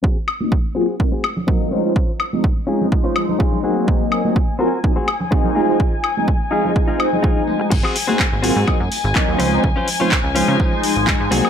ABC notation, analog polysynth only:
X:1
M:4/4
L:1/16
Q:"Swing 16ths" 1/4=125
K:Abmix
V:1 name="Analog polysynth"
z3 [G,B,CE] z2 [G,B,CF] z [G,B,CE] z3 [G,B,CE]2 [F,A,CE] [F,A,CE] | z3 [F,A,CE] z2 [F,A,CE]2 [F,E]3 [F,A,Ec]3 [G,B,CE]2- | [G,B,CE]3 [G,B,CE] z2 [G,B,CF] z [G,B,CE] z3 [G,B,CE]2 [F,A,CE] [F,A,CE] | z3 [F,A,CE] z2 [F,A,CE]2 [F,A,]3 [F,A,CE]4- [F,A,CE] |
z3 [G,B,CE] z2 [G,B,CF] z [G,B,CE] z3 [G,B,CE]2 [F,A,CE] [F,A,CE] | z3 [F,A,CE] z2 [F,A,CE]2 [F,A,Ec]3 [F,A,Ec]3 [G,B,CE]2 |]